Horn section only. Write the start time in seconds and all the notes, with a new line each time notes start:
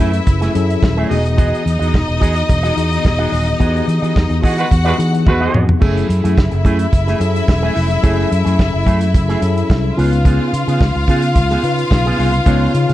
4.58 G#3 F#4 B4
4.86 G#3 F#4 B4
5.26 G#3 F#4 B4